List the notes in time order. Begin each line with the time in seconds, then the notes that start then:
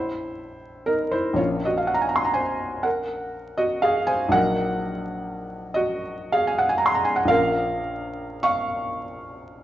Already playing: A#1 E3 G3 C#4 E4 C5
0.86 D#4 A#4
1.11 E4 C5
1.33 A#1 F3 A#3 C#4 C#5
1.37 F4
1.65 F#4 D#5
1.77 F5
1.87 F#5
1.94 A#5
2.01 G#5
2.09 A#5
2.16 C6
2.25 A#5
2.34 C5 G#5
2.83 A#4 F#5
3.57 F#4 D#5
3.82 G#4 F5
4.07 C5 G#5
4.28 A#1 F#3 A#3 D#4 F#5
4.33 A#4
5.74 F#4 D#5
6.32 G#4 F5
6.47 G#5
6.59 F#5
6.69 G#5
6.78 A#5
6.86 C6
6.95 A#5
7.05 G#5
7.16 F#5
7.25 A#1 F3 A#3 F5
7.29 C#4 A#4
8.43 F5 C#6